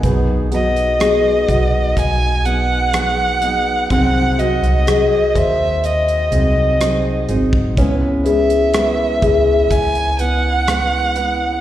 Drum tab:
HH |x-xxx-x-x-x-x-x-|x-xxx-x-xxx-x-x-|x-xxx-x-xxx-x-x-|
SD |----r-------r---|----r-------r---|----r-------r---|
BD |o-----o-o-------|o-----o--------o|o-----o-o-------|